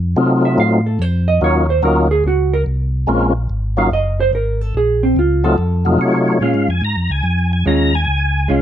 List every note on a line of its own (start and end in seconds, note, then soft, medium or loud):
0.00 0.16 F2 medium
0.16 0.57 C3 medium
0.16 0.81 F#3 medium
0.16 0.81 A3 medium
0.16 0.81 C4 medium
0.16 0.81 D#4 medium
0.16 0.81 F4 medium
0.45 0.58 E5 medium
0.58 0.99 A2 medium
0.58 0.86 F5 loud
0.86 1.02 A4 medium
0.99 1.40 F2 medium
0.99 1.28 C5 medium
1.28 1.41 D#5 medium
1.41 1.82 D#2 medium
1.41 1.66 F#3 medium
1.41 1.67 A#3 medium
1.41 1.67 C#4 medium
1.41 1.67 D#4 medium
1.41 1.67 F4 medium
1.41 1.70 C#5 medium
1.70 1.83 C5 medium
1.82 2.23 D2 medium
1.82 2.08 F#3 medium
1.82 2.08 A#3 medium
1.82 2.08 C#4 medium
1.82 2.08 D#4 medium
1.82 2.09 F4 medium
1.82 2.11 A#4 medium
2.11 2.25 G#4 medium
2.24 2.65 C#2 medium
2.24 2.53 F#4 medium
2.53 2.62 A#4 medium
2.66 3.07 C2 medium
3.07 3.48 A#1 medium
3.07 3.33 G#3 medium
3.07 3.33 A#3 medium
3.07 3.33 C4 medium
3.07 3.33 C#4 medium
3.07 3.34 F4 medium
3.50 3.90 G#1 loud
3.77 3.90 F#3 medium
3.77 3.90 A#3 medium
3.77 3.90 C#4 medium
3.77 3.90 D#4 medium
3.77 3.90 F4 medium
3.77 3.91 F5 loud
3.91 4.32 F#1 medium
3.91 4.19 D#5 medium
4.20 4.33 C5 loud
4.33 4.73 G#1 medium
4.33 4.61 A#4 medium
4.61 4.74 A4 medium
4.75 5.15 A#1 medium
4.75 5.03 G#4 medium
5.03 5.16 C4 medium
5.16 5.57 C#2 loud
5.16 5.44 F4 medium
5.44 5.56 F#3 medium
5.44 5.56 A3 medium
5.44 5.57 C4 medium
5.44 5.57 D#4 medium
5.44 5.57 F4 medium
5.44 5.96 A4 medium
5.58 5.98 F2 medium
5.85 6.38 C3 medium
5.85 6.38 F#3 medium
5.85 6.38 A3 medium
5.85 6.39 D#4 medium
5.85 6.39 F4 medium
5.99 6.40 C3 loud
5.99 6.43 C#5 medium
6.41 6.54 A#2 medium
6.41 6.66 G#3 medium
6.41 6.66 C#4 medium
6.41 6.67 F4 medium
6.41 6.70 F5 medium
6.54 6.68 G#2 medium
6.68 6.82 F2 medium
6.68 6.84 G#5 medium
6.82 6.96 G#2 medium
6.82 7.12 A#5 medium
6.96 7.10 F2 medium
7.09 7.23 C#2 medium
7.09 7.52 G#5 loud
7.23 7.64 F2 medium
7.53 7.66 G#5 loud
7.65 8.06 D#2 medium
7.65 7.91 G#3 medium
7.65 7.91 C#4 medium
7.65 7.92 F4 medium
7.65 7.95 A#5 medium
7.95 8.52 G#5 loud
8.08 8.48 C#2 medium
8.48 8.62 C2 medium
8.48 8.62 G#3 medium
8.48 8.62 C#4 medium
8.48 8.62 F4 medium
8.48 8.62 F5 medium